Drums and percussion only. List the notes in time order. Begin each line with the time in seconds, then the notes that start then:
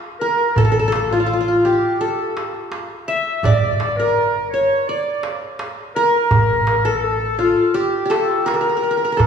0.56 darbuka dum
0.92 darbuka tek
2.00 darbuka ka
2.37 darbuka tek
2.54 darbuka ka
2.72 darbuka tek
3.44 darbuka dum
3.80 darbuka tek
4.34 darbuka ka
4.88 darbuka ka
5.23 darbuka tek
5.41 darbuka ka
5.59 darbuka tek
6.31 darbuka dum
6.67 darbuka tek
7.21 darbuka ka
7.75 darbuka ka
8.11 darbuka tek
8.30 darbuka ka
8.48 darbuka tek
9.19 darbuka dum